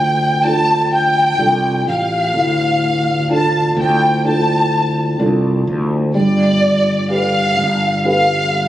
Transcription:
Already playing: fretless electric bass D2, felt piano D3 D4 F4 A4, violin section G5
0.44 felt piano D4 F4 A4, violin section A5
0.94 violin section G5
1.38 fretless electric bass C2, felt piano D4 F4 A4
1.86 fretless electric bass A1, violin section F5
2.34 fretless electric bass D2, felt piano A2
3.30 felt piano D4 F4 A4, violin section A5
3.77 fretless electric bass D2, violin section G5
4.25 felt piano D4 F4 A4, violin section A5
5.19 fretless electric bass C2, felt piano D4 F4 A4
5.67 fretless electric bass D2
6.14 fretless electric bass G1, felt piano G3, violin section D5
7.10 felt piano G4 A4 B4, violin section F5
7.57 fretless electric bass G1
8.05 felt piano G4 A4 B4, violin section F5

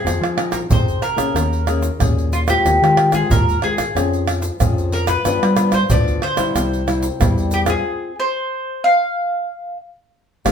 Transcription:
Already playing: nylon-string guitar C4 D#4 G#4, mandolin G#4
0.05 analog synth bass F2, nylon-string guitar F3, pandeiro, tamborim, shaker, surdo
0.21 analog synth bass F3, pandeiro, tamborim, shaker
0.36 nylon-string guitar C4 D#4 G#4, pandeiro, tamborim
0.52 mandolin A#4, pandeiro, tamborim, shaker, surdo
0.70 analog synth bass F2, nylon-string guitar C3 C4 D#4 G#4, mandolin C5, pandeiro, shaker, surdo
0.88 pandeiro, shaker, surdo
1.02 mandolin A#4, pandeiro, tamborim, shaker
1.16 nylon-string guitar A#3 C#4 G#4, pandeiro, tamborim, shaker, surdo
1.34 analog synth bass D#2, nylon-string guitar D#3, pandeiro, tamborim, shaker, surdo
1.53 pandeiro, shaker
1.67 nylon-string guitar A#3 C#4 G#4, pandeiro, tamborim, shaker
1.82 pandeiro, shaker
2.00 analog synth bass D#2, nylon-string guitar A#2 A#3 C#4 G#4, pandeiro, tamborim, shaker, surdo
2.18 pandeiro, shaker
2.33 mandolin F4, pandeiro, shaker
2.48 nylon-string guitar G#3 C4 F4, mandolin G4, pandeiro, tamborim, shaker, surdo
2.65 analog synth bass D#2, nylon-string guitar D#3, pandeiro, tamborim, shaker, surdo
2.82 analog synth bass D#3, nylon-string guitar G#3 C4 F4, pandeiro, tamborim, shaker
2.97 pandeiro, tamborim
3.12 nylon-string guitar G#3 C4 F4, mandolin G#4, pandeiro, tamborim, shaker, surdo
3.30 analog synth bass D#2, nylon-string guitar D#3, mandolin A#4, pandeiro, shaker, surdo
3.49 pandeiro, shaker, surdo
3.62 nylon-string guitar G#3 C4 F4, mandolin G#4, pandeiro, tamborim
3.78 pandeiro, tamborim, shaker, surdo
3.95 analog synth bass F2, nylon-string guitar F3 C4 C#4 G#4, pandeiro, tamborim, shaker, surdo
4.13 pandeiro, shaker
4.28 pandeiro, tamborim, shaker
4.42 pandeiro, shaker
4.60 analog synth bass F2, nylon-string guitar F3 C4 C#4 G#4, pandeiro, tamborim, shaker, surdo
4.78 pandeiro, shaker
4.92 mandolin A#4, pandeiro
5.07 mandolin B4, pandeiro, tamborim, shaker, surdo
5.25 nylon-string guitar G2 F3 B3 D4, analog synth bass G2, pandeiro, tamborim, shaker, surdo
5.43 analog synth bass G3, pandeiro, tamborim, shaker
5.57 nylon-string guitar F3 B3 D4, pandeiro, tamborim, shaker
5.72 mandolin C5, pandeiro, tamborim, shaker, surdo
5.90 analog synth bass D2, nylon-string guitar D3 F3 B3 D4, mandolin D5, pandeiro, shaker, surdo
6.08 pandeiro, shaker, surdo
6.22 mandolin C5, pandeiro, tamborim
6.37 nylon-string guitar G3 C4 E4, pandeiro, tamborim, shaker, surdo
6.55 analog synth bass C2, nylon-string guitar C3, pandeiro, tamborim, shaker, surdo
6.73 pandeiro, shaker
6.87 nylon-string guitar G3 C4 E4, pandeiro, tamborim, shaker
7.03 pandeiro, shaker
7.20 analog synth bass E2, nylon-string guitar G2 G3 C4 E4, pandeiro, tamborim, shaker, surdo
7.38 pandeiro, shaker
7.51 mandolin G4, pandeiro, shaker
7.65 nylon-string guitar C4 F4 G#4, pandeiro, tamborim, shaker, surdo
7.70 mandolin G#4
8.20 mandolin C5
8.84 mandolin F5
10.45 analog synth bass G#1, nylon-string guitar G#3 C4 D#4 G4, pandeiro, tamborim, shaker, surdo

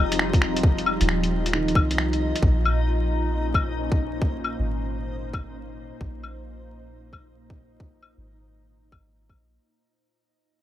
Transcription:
Already playing: 808-style bass F1, ambient pad F3 C4 D#4 F4 G4, felt piano F3, synth texture D#4 D#5
0.12 closed hi-hat
0.19 finger snap
0.33 kick, closed hi-hat
0.42 finger snap
0.56 closed hi-hat
0.63 kick
0.78 closed hi-hat
0.86 claves
1.01 808-style bass D#1, closed hi-hat
1.09 finger snap
1.24 closed hi-hat
1.46 closed hi-hat
1.53 felt piano D#3, finger snap
1.68 closed hi-hat
1.75 808-style bass C2, kick, claves
1.91 closed hi-hat
1.98 finger snap
2.13 closed hi-hat
2.36 closed hi-hat
2.42 808-style bass A#1, ambient pad A#2, kick
2.60 ambient pad A#3
2.65 claves
2.86 ambient pad C#4
2.97 ambient pad C5
3.54 kick, claves
3.92 kick
4.22 kick
4.44 claves
4.60 808-style bass G#1
5.33 kick, claves
6.01 808-style bass A#1, kick
6.23 claves
6.54 ambient pad D#4
7.13 kick, claves
7.50 kick
7.80 kick
8.02 claves
8.18 808-style bass G#1
8.92 808-style bass G#1, kick, claves
9.29 808-style bass A#1, kick, claves

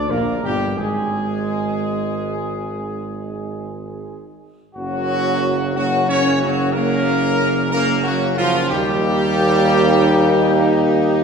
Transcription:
0.08 tuba A#1, trombone section A#3, trumpet section A#4
0.12 french horn section A#3
0.42 tuba G1, trombone section G3, french horn section G3, trumpet section G4
0.76 tuba G#1, trombone section G#3, french horn section G#3, trumpet section G#4
4.75 tuba F#1, trombone section F#3, french horn section A#3 C#4, trumpet section F#4
5.76 trombone section F#3, french horn section A#3 C#4, trumpet section F#4
6.07 trombone section C#4, trumpet section C#5
6.41 trombone section F#3, trumpet section F#4
6.73 french horn section A#3 C#4, trombone section A#3, trumpet section A#4
7.71 french horn section A#3 C#4, trombone section A#3, trumpet section A#4
8.03 trombone section F#3, trumpet section F#4
8.37 trombone section F3, trumpet section F4
8.69 tuba D#2, trombone section G3, french horn section A#3 D#4, trumpet section G4

